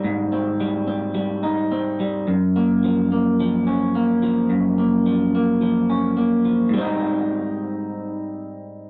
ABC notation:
X:1
M:4/4
L:1/8
Q:"Swing 16ths" 1/4=108
K:Ab
V:1 name="Clean electric guitar"
[A,,G,CE] C G, C G, E C G, | _G,, B, F, B, F, D B, F, | _G,, B, F, B, F, D B, F, | [A,,G,CE]8 |]